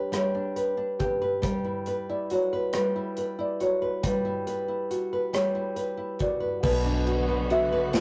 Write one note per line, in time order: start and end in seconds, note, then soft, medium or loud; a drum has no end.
0.00 0.12 G3 medium
0.00 0.33 D4 soft
0.00 0.99 G4 soft
0.00 0.56 B4 medium
0.00 0.15 C#5 medium
0.12 1.42 G3 medium
0.12 cross-stick medium
0.12 closed hi-hat medium
0.17 1.04 C#5 medium
0.34 0.76 D4 soft
0.56 1.21 B4 medium
0.56 closed hi-hat soft
0.77 1.52 D4 soft
0.99 2.31 G4 soft
0.99 2.13 B4 medium
0.99 kick medium
0.99 closed hi-hat soft
1.22 1.87 B4 medium
1.42 2.73 G3 medium
1.42 kick loud
1.42 closed hi-hat medium
1.64 2.08 E4 soft
1.86 2.52 B4 medium
1.86 closed hi-hat soft
2.09 2.94 E4 soft
2.09 2.32 D5 medium
2.30 3.60 F#4 soft
2.30 2.76 C#5 medium
2.30 closed hi-hat soft
2.53 3.18 B4 medium
2.73 4.02 G3 medium
2.73 3.42 B4 medium
2.73 cross-stick medium
2.73 closed hi-hat medium
2.96 3.37 E4 soft
3.17 3.81 B4 soft
3.17 closed hi-hat soft
3.39 4.24 E4 soft
3.39 3.62 D5 medium
3.60 4.90 F#4 soft
3.60 4.06 C#5 medium
3.60 closed hi-hat soft
3.82 4.46 B4 soft
4.03 5.32 G3 medium
4.03 6.18 B4 medium
4.03 kick medium
4.03 closed hi-hat medium
4.25 4.67 E4 soft
4.47 5.12 B4 medium
4.47 closed hi-hat soft
4.68 5.54 E4 soft
4.91 6.19 F#4 soft
4.91 closed hi-hat soft
5.13 5.76 B4 medium
5.33 6.72 G3 medium
5.33 6.17 C#5 medium
5.33 cross-stick medium
5.33 closed hi-hat medium
5.55 5.96 E4 soft
5.76 6.40 B4 soft
5.76 closed hi-hat soft
5.97 6.72 E4 soft
6.19 7.06 F#4 soft
6.19 7.55 D5 medium
6.19 kick medium
6.19 closed hi-hat soft
6.40 6.63 B4 medium
6.63 8.00 B1 medium
6.63 7.92 B2 medium
6.63 8.00 D3 medium
6.63 8.00 F#3 medium
6.63 8.00 A3 medium
6.63 8.00 B3 medium
6.63 8.00 F#4 medium
6.63 7.27 B4 medium
6.63 kick loud
6.63 crash loud
6.85 8.00 D4 medium
7.06 7.49 F#4 medium
7.06 ride soft
7.29 7.71 B4 medium
7.50 8.00 F#4 medium
7.50 8.00 E5 medium
7.50 ride soft
7.72 7.93 B4 medium
7.93 8.00 B2 medium
7.93 8.00 B4 medium
7.93 snare loud
7.93 ride medium